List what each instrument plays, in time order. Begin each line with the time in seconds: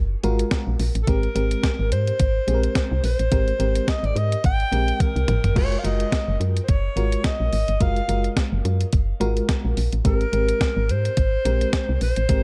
Already playing: fm bass F#1
0.23 fm bass G#1, fm electric piano G#3 F4 F#4 A#4, closed hi-hat
0.39 closed hi-hat
0.51 kick, snare, closed hi-hat
0.67 fm bass A#1
0.79 fm bass A#1, open hi-hat
0.95 fm bass A1, closed hi-hat
1.03 alto saxophone A4
1.07 fm bass G#1, fm electric piano G#3 C4 G4 A#4, alto saxophone A#4, kick, closed hi-hat
1.23 closed hi-hat
1.35 fm bass G#1, fm electric piano G#3 C4 G4 A#4, closed hi-hat
1.51 closed hi-hat
1.63 kick, snare, closed hi-hat
1.79 fm bass G#1
1.91 fm bass G#2, alto saxophone C5, closed hi-hat
2.07 closed hi-hat
2.20 fm bass G#1, kick, closed hi-hat
2.47 fm bass A#1, fm electric piano G#3 C4 G4 G#4, closed hi-hat
2.54 fm electric piano A#4
2.63 closed hi-hat
2.75 kick, snare, closed hi-hat
2.92 fm bass C2
3.04 fm bass A#1, alto saxophone C5, open hi-hat
3.19 fm bass A1, closed hi-hat
3.31 fm bass G#1, fm electric piano G#3 C4 G4 A#4, kick, closed hi-hat
3.48 closed hi-hat
3.59 fm bass G#1, fm electric piano G#3 C4 G4 A#4, closed hi-hat
3.75 closed hi-hat
3.88 alto saxophone D#5, kick, snare, closed hi-hat
4.03 fm bass G#1, alto saxophone D5, closed hi-hat
4.16 fm bass G#2, alto saxophone D#5, closed hi-hat
4.32 closed hi-hat
4.44 fm bass G#1, alto saxophone G5, kick, closed hi-hat
4.60 closed hi-hat
4.72 fm bass A#1, fm electric piano G#3 C4 G4 A#4, closed hi-hat
4.88 closed hi-hat
5.00 alto saxophone A#4, kick, closed hi-hat, high tom
5.16 fm bass C2, closed hi-hat
5.28 fm bass G#1, closed hi-hat, mid tom
5.44 fm bass G1, closed hi-hat, floor tom
5.55 fm bass F#1, fm electric piano G#3 F4 F#4 A#4, alto saxophone C#5, kick, crash
5.72 closed hi-hat
5.79 alto saxophone F5
5.84 fm bass F#1, fm electric piano G#3 F4 F#4 A#4, alto saxophone D#5, closed hi-hat
6.00 closed hi-hat
6.12 kick, snare, closed hi-hat
6.28 fm bass F#1
6.40 fm bass F#2, closed hi-hat
6.57 closed hi-hat
6.63 alto saxophone C5
6.68 fm bass F#1, alto saxophone C#5, kick, closed hi-hat
6.96 fm bass G#1, fm electric piano G#3 F4 F#4 A#4, closed hi-hat
7.12 closed hi-hat
7.24 alto saxophone D#5, kick, snare, closed hi-hat
7.40 fm bass A#1
7.53 fm bass G#1, open hi-hat
7.68 fm bass G1, closed hi-hat
7.80 fm bass F#1, fm electric piano G#3 F4 F#4 A#4, alto saxophone F5, kick, closed hi-hat
7.96 closed hi-hat
8.08 fm bass F#1, fm electric piano G#3 F4 F#4 A#4, closed hi-hat
8.24 closed hi-hat
8.37 kick, snare, closed hi-hat
8.52 fm bass F#1
8.65 fm bass F#2, closed hi-hat
8.81 closed hi-hat
8.93 fm bass F#1, kick, closed hi-hat
9.20 fm bass G#1, fm electric piano G#3 F4 F#4 A#4, closed hi-hat
9.37 closed hi-hat
9.49 kick, snare, closed hi-hat
9.65 fm bass A#1
9.77 fm bass A#1, open hi-hat
9.93 fm bass A1, closed hi-hat
10.05 fm bass G#1, fm electric piano G#3 C4 G4 A#4, alto saxophone A#4, kick, closed hi-hat
10.21 closed hi-hat
10.32 fm bass G#1, fm electric piano G#3 C4 G4 A#4, closed hi-hat
10.49 closed hi-hat
10.61 kick, snare, closed hi-hat
10.77 fm bass G#1
10.89 fm bass G#2, alto saxophone C5, closed hi-hat
11.05 closed hi-hat
11.17 fm bass G#1, kick, closed hi-hat
11.45 fm bass A#1, fm electric piano G#3 C4 G4 A#4, closed hi-hat
11.61 closed hi-hat
11.73 kick, snare, closed hi-hat
11.89 fm bass C2
12.01 fm bass A#1, alto saxophone C5, open hi-hat
12.16 fm bass A1, closed hi-hat
12.29 fm bass G#1, fm electric piano G#3 C4 G4 A#4, kick, closed hi-hat